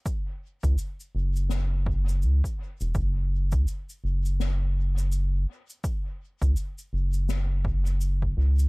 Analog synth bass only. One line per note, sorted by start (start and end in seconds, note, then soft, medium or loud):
0.63 0.76 C#2 medium
1.15 2.24 F#1 medium
2.23 2.42 C#2 medium
2.81 2.93 E1 medium
2.95 3.54 F#1 medium
3.53 3.65 C#2 medium
4.04 5.45 F#1 medium
6.42 6.55 C#2 medium
6.93 8.34 F#1 medium
8.37 8.69 C#2 medium